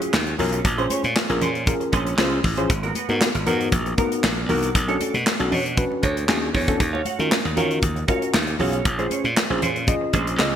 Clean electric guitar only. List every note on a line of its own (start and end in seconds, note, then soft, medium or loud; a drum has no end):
0.01 muted clean electric guitar stroke medium
0.13 muted clean electric guitar stroke soft
0.27 muted clean electric guitar stroke soft
0.39 0.53 F#3 medium
0.39 0.52 C#4 medium
0.39 0.51 F4 medium
0.53 0.68 F#3 soft
0.53 0.63 C#4 medium
0.53 0.65 F4 medium
0.65 muted clean electric guitar stroke soft
0.78 0.89 C#4 medium
0.78 0.90 G#4 medium
0.78 0.91 C5 medium
0.90 1.06 C#4 medium
0.90 1.03 G#4 medium
0.90 1.03 C#5 medium
1.04 muted clean electric guitar stroke soft
1.16 muted clean electric guitar stroke soft
1.29 muted clean electric guitar stroke soft
1.41 1.61 C#4 medium
1.41 1.54 G#4 medium
1.41 1.54 C5 medium
1.55 muted clean electric guitar stroke soft
1.80 muted clean electric guitar stroke medium
1.92 2.12 C#4 medium
1.92 2.06 G#4 medium
1.92 2.05 C5 loud
2.06 muted clean electric guitar stroke soft
2.18 2.38 C#4 medium
2.18 2.31 G#4 medium
2.18 2.31 C5 medium
2.32 muted clean electric guitar stroke soft
2.44 muted clean electric guitar stroke soft
2.57 2.70 C#4 soft
2.57 2.70 G#4 medium
2.57 2.72 C5 medium
2.69 muted clean electric guitar stroke soft
2.83 2.94 B3 medium
2.83 2.94 F#4 medium
2.83 2.96 A#4 medium
2.95 3.11 B3 medium
2.95 3.08 F#4 medium
2.95 3.08 B4 medium
3.09 muted clean electric guitar stroke soft
3.21 muted clean electric guitar stroke soft
3.35 muted clean electric guitar stroke soft
3.46 3.66 B3 medium
3.46 3.60 F#4 loud
3.46 3.59 A#4 loud
3.60 muted clean electric guitar stroke soft
3.86 muted clean electric guitar stroke soft
3.98 4.17 B3 medium
3.98 4.11 F#4 medium
3.98 4.10 A#4 loud
4.11 muted clean electric guitar stroke medium
4.24 muted clean electric guitar stroke soft
4.37 muted clean electric guitar stroke soft
4.49 4.62 B3 medium
4.49 4.62 F#4 medium
4.49 4.61 A#4 medium
4.63 4.74 B3 soft
4.63 4.75 F#4 medium
4.63 4.75 A#4 medium
4.75 muted clean electric guitar stroke soft
4.88 4.99 D4 medium
4.88 5.00 A4 medium
4.88 5.01 C#5 medium
5.00 5.16 D4 medium
5.00 5.14 A4 medium
5.00 5.14 D5 medium
5.14 muted clean electric guitar stroke soft
5.26 muted clean electric guitar stroke soft
5.40 muted clean electric guitar stroke soft
5.51 5.71 D4 medium
5.51 5.65 A4 medium
5.51 5.64 C#5 medium
5.65 muted clean electric guitar stroke soft
5.91 muted clean electric guitar stroke soft
6.03 6.22 D4 medium
6.03 6.16 A4 medium
6.03 6.15 C#5 medium
6.16 muted clean electric guitar stroke soft
6.28 muted clean electric guitar stroke soft
6.42 muted clean electric guitar stroke soft
6.54 6.67 D4 medium
6.54 6.67 A4 medium
6.54 6.66 C#5 medium
6.67 6.83 D4 soft
6.67 6.79 A4 medium
6.67 6.79 C#5 medium
6.80 muted clean electric guitar stroke soft
6.93 7.04 F#4 medium
6.93 7.04 C#5 medium
6.93 7.06 F5 medium
7.05 7.21 F#4 medium
7.05 7.18 C#5 medium
7.05 7.18 F#5 medium
7.19 muted clean electric guitar stroke soft
7.31 muted clean electric guitar stroke soft
7.44 muted clean electric guitar stroke soft
7.56 7.76 F#4 medium
7.56 7.70 C#5 medium
7.56 7.69 F5 medium
7.70 muted clean electric guitar stroke soft
7.96 muted clean electric guitar stroke soft
8.08 8.28 F#4 medium
8.08 8.21 C#5 medium
8.08 8.21 F5 medium
8.22 muted clean electric guitar stroke medium
8.34 muted clean electric guitar stroke soft
8.47 muted clean electric guitar stroke soft
8.59 8.73 F#4 medium
8.59 8.72 C#5 medium
8.59 8.72 F5 medium
8.73 8.85 F#4 soft
8.73 8.85 C#5 medium
8.73 8.87 F5 medium
8.99 9.09 C#4 medium
8.99 9.10 G#4 medium
8.99 9.11 C5 medium
9.11 9.26 C#4 medium
9.11 9.24 G#4 medium
9.11 9.24 C#5 medium
9.24 muted clean electric guitar stroke soft
9.36 muted clean electric guitar stroke soft
9.50 muted clean electric guitar stroke soft
9.62 9.82 C#4 medium
9.62 9.75 G#4 medium
9.62 9.74 C5 medium
9.76 muted clean electric guitar stroke soft
9.88 muted clean electric guitar stroke soft
10.01 muted clean electric guitar stroke medium
10.13 10.27 C#4 medium
10.13 10.26 G#4 medium
10.13 10.26 C5 loud
10.27 10.38 C#4 medium
10.27 10.38 G#4 medium
10.27 10.39 C5 medium
10.39 muted clean electric guitar stroke soft